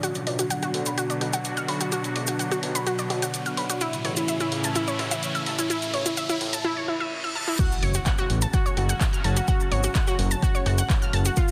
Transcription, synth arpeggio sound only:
0.03 F#4
0.27 D5
0.39 F#4
0.50 F#5
0.63 F#4
0.86 B5
0.98 F#4
1.10 D5
1.21 F#4
1.33 F#5
1.57 F6
1.68 B5
1.81 F#4
1.92 F#4
2.16 D5
2.28 F#4
2.39 F#5
2.52 F#4
2.75 B5
2.87 F#4
2.99 D5
3.10 F#4
3.22 F#5
3.46 F6
3.57 B5
3.70 F#4
3.81 E4
4.05 C#5
4.17 E4
4.28 E5
4.40 E4
4.64 A5
4.76 E4
4.88 C#5
4.99 E4
5.11 E5
5.35 E6
5.46 A5
5.59 E4
5.70 E4
5.94 C#5
6.06 E4
6.17 E5
6.29 E4
6.53 A5
6.64 E4
6.77 C#5
6.88 E4
7.00 E5
7.24 E6
7.35 A5
7.48 E4
7.59 F#4 F#5
7.83 C#5 C#6
7.95 F#4 F#5
8.06 F#5 F#6
8.18 F#4 F#5
8.42 A5 A6
8.53 F#4 F#5
8.66 C#5 C#6
8.77 F#4 F#5
8.89 F#5 F#6
9.13 F6
9.24 A5 A6
9.37 F#4 F#5
9.48 F#4 F#5
9.72 C#5 C#6
9.84 F#4 F#5
9.95 F#5 F#6
10.07 F#4 F#5
10.31 A5 A6
10.42 F#4 F#5
10.55 C#5 C#6
10.66 F#4 F#5
10.78 F#5 F#6
11.02 F6
11.13 A5 A6
11.26 F#4 F#5
11.37 F4 F5

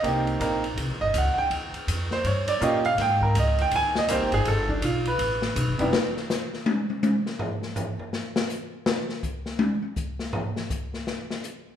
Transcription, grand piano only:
0.03 A#3 C4 D#4 G4
0.40 A#3 C4 D#4 A#4
1.01 D#5
1.18 F#5
1.34 F#5
1.38 G5
2.13 C5
2.27 C#5
2.48 D5
2.61 A#3 C#4 F4 G4 D#5
2.86 F5
3.01 G5
3.23 A#4
3.39 D#5
3.62 G5
3.76 G#5
3.98 D#5
4.08 A#3 C4 D#4 G4 C5
4.34 G#4
4.48 A4
4.69 D4
4.84 F4
5.07 B4
5.78 C3 G3 B3 D4 E4

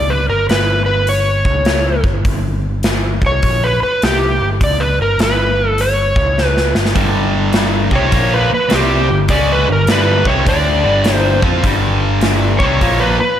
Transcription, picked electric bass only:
Already playing: C#2
0.28 G1
0.49 G1
1.45 C#2
2.03 G1
2.25 G1
3.22 C2
3.43 A#1
3.82 muted picked electric bass stroke
4.03 C2
4.41 G1
4.61 C#2
5.00 G1
5.18 G1
6.16 C#2
6.75 G1
6.95 G1
7.92 C2
8.12 A#1
8.52 muted picked electric bass stroke
8.73 C2
9.10 G1
9.29 C#2
9.69 G1
9.88 G1
10.25 C2
10.47 D2
10.85 G1
11.43 F2
11.64 G1
12.60 C2
12.81 A#1
13.21 muted picked electric bass stroke

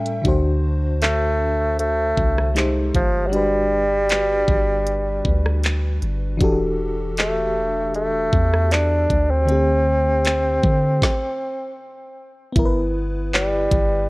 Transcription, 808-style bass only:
0.25 D2
2.17 C2
2.94 G1
4.48 G1
5.25 D2
6.02 G1
6.41 E1
8.33 E2
9.10 D2
10.64 D3
12.56 G1
13.71 G1

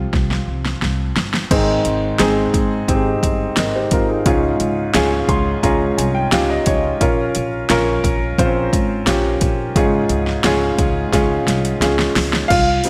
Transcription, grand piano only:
Already playing: F3 G3 C4 F4 F5
1.51 G#2 D#3 C4 D#4 G#4
2.20 C4 D#4 G#4
2.88 C4 D#4 G4
2.95 G#4
3.58 A#4 D#5
3.75 G4 C5
3.93 F4 A#4
4.09 D#4 G#4
4.26 G#2 C#4 F4 G#4
4.95 C#4 F4 G#4
5.29 C6
5.63 C#4 F4 G#4 A#5
5.97 G#5
6.14 G5
6.32 C#4 F4 G4 F5
6.50 D#5
6.67 C#5
7.01 C#4 F4 A#4
7.70 C#4 F4 A#4
8.39 C4 F4 C5
8.45 C#4
9.07 C#4 F4 G4
9.76 G#2 C#4 F4 G#4
10.45 C#4 F4 G#4
11.12 C#4 F4 G#4
11.82 C#4 F4 G#4
12.48 F4 F5
12.84 G3 C4 D#4

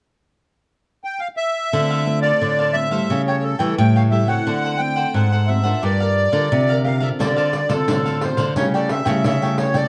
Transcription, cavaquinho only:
1.73 D4 A4 C5 F5
1.90 A4 C5 F5
2.06 muted cavaquinho stroke
2.23 A4 C5 F5
2.41 D4 A4 C5 F5
2.59 A4 C5 F5
2.91 A4 C5 F5
3.10 G4 A4 C#5 G5
3.28 A4 C#5 G5
3.59 A4 C#5 G5
3.96 A4 C#5 G5
4.12 G4 A4 C#5 G5
4.28 A4 C#5 G5
4.47 D4 A4 C5 F#5
4.64 A4 C5 F#5
4.80 muted cavaquinho stroke
4.96 A4 C5 F#5
5.15 D4 A4 C5 F#5
5.32 A4 C5 F#5
5.64 A4 C5 F#5
5.83 G4 A#4 D5 F5
6.00 A#4 D5 F5
6.32 A#4 D5 F5
6.69 A#4 D5 F5
6.84 G4 A#4 D5 F5
7.00 A#4 D5 F5
7.19 D4 A4 C5 F5
7.36 A4 C5 F5
7.52 muted cavaquinho stroke
7.69 A4 C5 F5
7.88 D4 A4 C5 F5
8.06 A4 C5 F5
8.37 A4 C5 F5
8.56 G4 A4 C#5 G5
8.74 A4 C#5 G5
9.05 A4 C#5 G5
9.42 A4 C#5 G5
9.57 G4 A4 C#5 G5
9.74 A4 C#5 G5

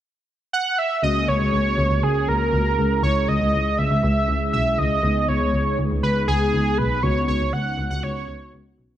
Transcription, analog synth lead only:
0.53 F#5
0.78 E5
1.03 D#5
1.28 C#5
2.03 G#4
2.28 A#4
3.03 C#5
3.28 D#5
3.78 E5
4.53 E5
4.78 D#5
5.28 C#5
6.03 B4
6.28 G#4
6.78 B4
7.03 C#5
7.28 C#5
7.53 F#5
7.90 F#5
8.03 C#5

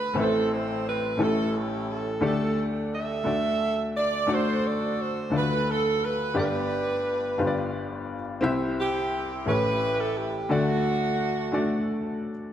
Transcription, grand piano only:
Already playing: D2 D3 A3 D4 F#4 A4 C5 D5
0.14 A1 A2 A3 C4 E4 A4 B4
0.23 C5
1.17 A1 A2 A3 C#4 E4 G4 A4
2.21 D2 D3 A3 D4 G4 A4 D5
3.24 D2 D3 A3 D4 F#4 A4 D5
4.27 A3 D4 F#4 A4 D5
5.30 D2 D3 A3 D4 F4 A4 D5
5.38 F#4
6.34 G1 G2 B3 D4 G4 B4 D5
7.38 G1 G2 D4 F4 G4 B4 C5
7.47 D5
8.41 C2 C3 C4 E4 G4 C5 E5
9.46 A1 A2 C#4 E4 G4 A4 C#5
10.49 D2 D3 A3 D4 F#4 A4 D5
11.52 A3 D4 F#4 A4 D5

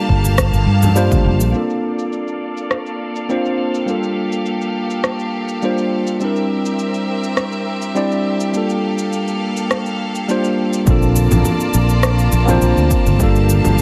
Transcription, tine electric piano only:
Already playing: G3 A#3 D4 F4 A4
0.95 G3 A#3 D4 F4 C5
1.52 A#3 C4 D4 F4
1.57 A4
3.29 A#3 C4 D4 F4 C5
3.86 G3 A#3 D4 F4
3.90 A4
5.62 G3 A#3 D4 F4 C5
6.20 G3 C4 D4 E4
6.25 A#4
7.95 G3 C4 D4 E4 D5
8.53 G3 A#3 D4 F4
8.57 A4
10.28 G3 A#3 D4 F4 C5
10.86 A#3 C4 D4 F4
10.91 A4
12.46 A#3 C4 D4 F4
12.51 C5
13.18 G3 A#3 D4 F4
13.23 A4

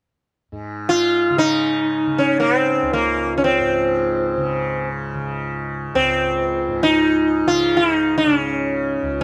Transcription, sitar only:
0.89 F4
1.38 D#4
2.18 C#4
2.40 C4
2.93 A#3
3.38 C#4
3.44 C4
5.95 C4
6.83 D#4
7.48 F4
7.77 E4
7.94 D#4
8.18 D4
8.38 C#4

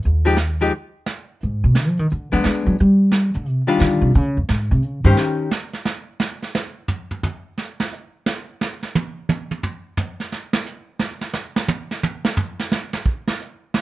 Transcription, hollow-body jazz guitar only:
0.25 F3 G#3 D#4 G4
0.61 F3 G#3 D#4 G4
2.32 G#3 B3 D4
3.67 D#3 G3 D4 F4
5.05 D#3 C#4 G4 C5

